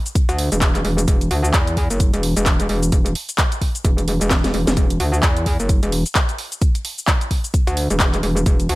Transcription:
0.06 closed hi-hat, shaker
0.15 kick, closed hi-hat, shaker
0.29 D2, closed hi-hat, shaker
0.39 open hi-hat
0.52 E1, closed hi-hat, shaker
0.61 kick, clap, closed hi-hat, shaker
0.75 clap, closed hi-hat, shaker
0.85 E1, open hi-hat
0.98 closed hi-hat, shaker
1.08 E1, kick, closed hi-hat, shaker
1.21 closed hi-hat, shaker
1.31 D2, open hi-hat
1.44 shaker
1.54 E2, kick, clap, closed hi-hat, shaker
1.67 closed hi-hat, shaker
1.77 kick, open hi-hat
1.90 F#1, closed hi-hat, shaker
2.00 kick, closed hi-hat, shaker
2.13 E1, closed hi-hat, shaker
2.23 open hi-hat
2.37 E1, closed hi-hat, shaker
2.46 kick, clap, closed hi-hat, shaker
2.60 closed hi-hat, shaker
2.69 E1, open hi-hat
2.83 closed hi-hat, shaker
2.92 E1, kick, closed hi-hat, shaker
3.06 closed hi-hat, shaker
3.15 open hi-hat
3.29 closed hi-hat, shaker
3.38 kick, clap, closed hi-hat, shaker
3.52 closed hi-hat, shaker
3.61 kick, open hi-hat
3.75 closed hi-hat, shaker
3.85 E1, kick, closed hi-hat, shaker
3.98 closed hi-hat, shaker
4.08 open hi-hat
4.21 E1, closed hi-hat, shaker
4.30 kick, snare, clap, closed hi-hat, shaker
4.44 snare, closed hi-hat, shaker
4.54 E1, open hi-hat
4.67 E1, snare, closed hi-hat, shaker
4.77 E1, kick, closed hi-hat, shaker
4.90 closed hi-hat, shaker
5.00 D2, open hi-hat
5.14 shaker
5.23 E2, kick, clap, closed hi-hat, shaker
5.37 closed hi-hat, shaker
5.46 kick, open hi-hat
5.60 F#1, closed hi-hat, shaker
5.69 kick, closed hi-hat, shaker
5.83 E1, closed hi-hat, shaker
5.92 open hi-hat
6.06 closed hi-hat, shaker
6.15 kick, clap, closed hi-hat, shaker
6.29 closed hi-hat, shaker
6.38 open hi-hat
6.52 closed hi-hat, shaker
6.62 kick, closed hi-hat, shaker
6.75 closed hi-hat, shaker
6.85 open hi-hat
6.98 shaker
7.07 kick, clap, closed hi-hat, shaker
7.21 closed hi-hat, shaker
7.31 kick, open hi-hat
7.44 closed hi-hat, shaker
7.54 kick, closed hi-hat, shaker
7.67 D2, closed hi-hat, shaker
7.77 open hi-hat
7.90 E1, closed hi-hat, shaker
8.00 kick, clap, closed hi-hat, shaker
8.13 clap, closed hi-hat, shaker
8.23 E1, open hi-hat
8.37 closed hi-hat, shaker
8.46 E1, kick, closed hi-hat, shaker
8.60 closed hi-hat, shaker
8.69 D2, open hi-hat

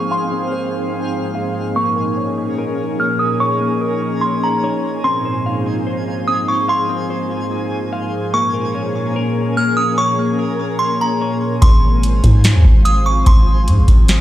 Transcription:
Already playing: G#2 F3 A#3 C4 D#4 G#4 C5 F5 C#6
0.11 F5 C6
0.32 C4
0.53 C5
1.35 F5
1.76 A#2 A#3 C#4 A#4 G#5 C#6
1.96 A#4
2.17 C#5
2.58 A#4
2.99 A#3 F6
3.19 D#6
3.40 C#5 C#6
3.61 A#3
3.81 A#4
4.21 C6
4.44 A#5
4.64 C#5
5.04 G#2 A#3 C4 F4 C5 C6
5.25 C5
5.46 F5
5.87 C5
6.28 C4 D#6
6.48 C#6
6.68 F5 C6
6.89 C4
7.10 C5
7.93 F5
8.33 A#2 F3 A#3 C#4 G#4 A#4 C#6
8.54 A#4
8.75 C#5
9.16 A#4
9.57 A#3 F6
9.77 D#6
9.98 C#5 C#6
10.18 A#3
10.39 A#4
10.79 C6
11.01 A#5
11.21 C#5
11.62 G#1 F3 G#3 C4 F4 C5 G#5 C6, kick, closed hi-hat
12.03 closed hi-hat
12.24 G#2, kick, closed hi-hat
12.44 snare, closed hi-hat
12.55 D#2
12.65 G#1, kick
12.85 D#6, closed hi-hat
13.06 C#6
13.26 G#1 C6, kick, closed hi-hat
13.68 G#2, closed hi-hat
13.78 G#1
13.88 G#1, kick, closed hi-hat
14.08 snare, closed hi-hat

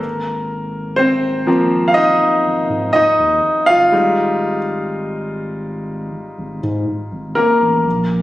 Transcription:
Already playing: A#3 A#4
0.00 G#1
0.96 C4 C5
1.47 F3 A#3 C4
1.88 F5
1.94 D#4 D#5
2.45 G#1
2.70 G#2
2.93 D#2 D#4 D#5
3.19 D#2
3.66 G1 F4 F5
3.92 G#1 G3 G#3 D#4
6.38 G#1
6.63 G#2
6.88 G#1
7.12 G#1
7.35 A#3 A#4
7.61 A1
7.86 A#1

